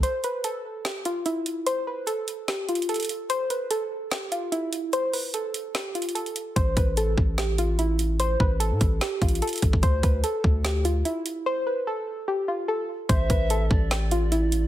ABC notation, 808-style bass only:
X:1
M:4/4
L:1/16
Q:1/4=147
K:Am
V:1 name="808-style bass" clef=bass
z16 | z16 | z16 | z16 |
A,,,2 A,,,4 A,,,8- A,,,2- | A,,,2 A,,,3 A,, A,,,2 z2 A,,,2 z2 A,,, A,,, | D,,2 D,,2 z2 D,,6 z4 | z16 |
A,,,2 A,,,4 A,,,8- A,,,2 |]